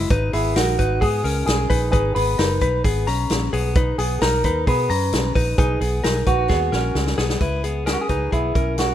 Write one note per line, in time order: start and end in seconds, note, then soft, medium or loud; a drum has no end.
0.00 0.11 G#3 medium
0.00 0.11 E4 medium
0.10 0.30 G#1 loud
0.10 0.34 D#4 medium
0.10 0.33 B4 loud
0.10 kick loud
0.10 hi-hat pedal medium
0.10 open hi-hat medium
0.33 0.53 G#1 loud
0.33 0.56 B3 medium
0.33 0.57 E4 medium
0.33 0.56 G#4 medium
0.33 hi-hat pedal medium
0.33 open hi-hat medium
0.56 0.76 A#1 loud
0.56 0.78 D#4 medium
0.56 1.03 F#4 medium
0.56 0.78 A#4 medium
0.56 snare loud
0.56 hi-hat pedal medium
0.56 open hi-hat loud
0.79 0.99 G#1 medium
0.79 1.02 D#4 medium
0.79 1.02 B4 medium
0.79 kick medium
0.79 hi-hat pedal medium
0.79 open hi-hat medium
1.01 1.21 G#2 loud
1.01 1.24 B3 medium
1.01 1.24 G#4 medium
1.01 1.44 G#4 medium
1.01 kick medium
1.01 hi-hat pedal medium
1.01 open hi-hat medium
1.24 1.44 C#2 loud
1.24 1.68 C#4 medium
1.24 1.67 A#4 medium
1.24 hi-hat pedal medium
1.24 open hi-hat medium
1.47 1.67 B1 medium
1.47 1.90 G#4 loud
1.47 snare loud
1.47 hi-hat pedal medium
1.47 open hi-hat loud
1.70 1.90 A#1 medium
1.70 1.92 D#4 medium
1.70 1.91 B4 medium
1.70 kick medium
1.70 hi-hat pedal medium
1.70 open hi-hat medium
1.92 2.12 G#1 loud
1.92 2.16 D#4 medium
1.92 2.15 G#4 loud
1.92 2.15 B4 loud
1.92 kick loud
1.92 hi-hat pedal medium
1.92 open hi-hat medium
2.15 2.35 G#1 loud
2.15 2.39 B3 medium
2.15 2.38 G#4 medium
2.15 3.48 B4 medium
2.15 hi-hat pedal medium
2.15 open hi-hat medium
2.39 2.58 F#1 medium
2.39 2.61 D#4 medium
2.39 2.61 A#4 medium
2.39 snare loud
2.39 hi-hat pedal medium
2.39 open hi-hat medium
2.61 2.81 B1 medium
2.61 2.85 D#4 medium
2.61 2.84 B4 medium
2.61 kick medium
2.61 hi-hat pedal medium
2.61 open hi-hat medium
2.84 3.04 G#1 loud
2.84 3.08 B3 medium
2.84 3.07 G#4 medium
2.84 kick loud
2.84 hi-hat pedal medium
2.84 open hi-hat medium
3.07 3.27 B1 loud
3.07 3.50 C#4 medium
3.07 3.50 A#5 medium
3.07 hi-hat pedal medium
3.07 open hi-hat medium
3.30 3.49 A#1 medium
3.30 snare loud
3.30 hi-hat pedal medium
3.30 open hi-hat loud
3.53 3.92 B1 loud
3.53 3.76 B3 medium
3.53 3.75 G#4 medium
3.53 hi-hat pedal medium
3.53 open hi-hat medium
3.75 3.99 D#4 medium
3.75 3.98 B4 medium
3.75 kick loud
3.75 hi-hat pedal medium
3.75 open hi-hat medium
3.98 4.18 B1 loud
3.98 4.22 B3 medium
3.98 4.21 G#4 medium
3.98 hi-hat pedal medium
3.98 open hi-hat medium
4.21 4.41 B1 loud
4.21 4.44 D#4 medium
4.21 4.68 A#4 loud
4.21 4.44 A#4 medium
4.21 snare loud
4.21 hi-hat pedal medium
4.21 open hi-hat medium
4.44 4.64 D#2 medium
4.44 4.68 D#4 medium
4.44 4.67 B4 medium
4.44 kick medium
4.44 hi-hat pedal medium
4.44 open hi-hat medium
4.67 4.87 B2 loud
4.67 4.90 B3 medium
4.67 4.90 G#4 medium
4.67 5.32 B4 medium
4.67 kick medium
4.67 hi-hat pedal medium
4.67 open hi-hat medium
4.89 5.09 F#2 medium
4.89 5.33 C#4 medium
4.89 5.33 A#5 medium
4.89 hi-hat pedal medium
4.89 open hi-hat medium
5.12 5.32 B1 loud
5.12 snare loud
5.12 hi-hat pedal medium
5.12 open hi-hat loud
5.35 5.55 A#1 medium
5.35 5.58 D#4 medium
5.35 5.57 B4 medium
5.35 kick medium
5.35 hi-hat pedal medium
5.35 open hi-hat medium
5.58 5.78 B1 medium
5.58 5.81 D#4 medium
5.58 6.27 G#4 loud
5.58 5.81 B4 loud
5.58 kick loud
5.58 hi-hat pedal medium
5.58 open hi-hat medium
5.81 6.00 B1 loud
5.81 6.04 B3 medium
5.81 6.03 G#4 medium
5.81 hi-hat pedal medium
5.81 open hi-hat medium
6.04 6.23 B1 loud
6.04 6.26 D#4 medium
6.04 6.27 A#4 medium
6.04 snare loud
6.04 hi-hat pedal medium
6.04 open hi-hat medium
6.26 6.46 A#1 medium
6.26 6.50 D#4 medium
6.26 7.14 F#4 loud
6.26 6.50 B4 medium
6.26 kick medium
6.26 hi-hat pedal medium
6.26 open hi-hat medium
6.49 6.69 D#2 medium
6.49 6.72 B3 medium
6.49 6.72 G#4 medium
6.49 kick medium
6.49 snare medium
6.72 6.92 A#1 loud
6.72 7.16 C#4 medium
6.72 7.15 A#4 medium
6.72 snare medium
6.95 7.14 C#2 medium
6.95 snare medium
7.07 snare medium
7.18 7.37 B1 medium
7.18 7.40 B3 medium
7.18 7.41 G#4 medium
7.18 snare medium
7.30 snare loud
7.41 7.95 C#2 medium
7.41 7.64 E4 medium
7.41 7.64 B4 medium
7.41 kick loud
7.41 closed hi-hat medium
7.64 7.86 B3 medium
7.64 7.87 G#4 medium
7.64 closed hi-hat medium
7.86 8.10 C#4 medium
7.86 7.93 G#4 medium
7.86 8.09 A#4 medium
7.86 snare loud
7.86 closed hi-hat medium
7.93 8.00 F#4 medium
8.01 8.33 G#4 medium
8.09 8.29 C#2 medium
8.09 8.33 D#4 medium
8.09 8.32 B4 medium
8.09 kick medium
8.09 closed hi-hat medium
8.32 8.52 B1 medium
8.32 8.55 B3 medium
8.32 8.75 E4 medium
8.32 8.55 G#4 medium
8.32 kick medium
8.32 closed hi-hat medium
8.55 8.94 B1 medium
8.55 8.94 C#4 medium
8.55 8.94 A#4 medium
8.55 kick loud
8.55 closed hi-hat medium
8.78 8.94 F#4 medium
8.78 snare loud
8.78 closed hi-hat medium